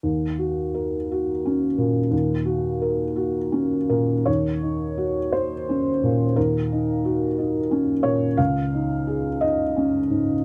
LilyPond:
\new Staff \with { instrumentName = "Felt piano" } { \time 6/8 \key ees \dorian \tempo 4. = 58 << { r2. | r2 r8 bes'8 | des''4. c''4. | bes'2~ bes'8 des''8 |
f''4. ees''4. | } \\ { ees,8 ges'8 bes'8 ges'8 des'8 bes,8 | ees,8 ges'8 bes'8 ges'8 des'8 bes,8 | ees,8 ees'8 ges'8 ees'8 des'8 bes,8 | ees,8 ees'8 ges'8 ees'8 des'8 bes,8 |
des,8 ees'8 aes'8 ees'8 des'8 aes,8 | } >> }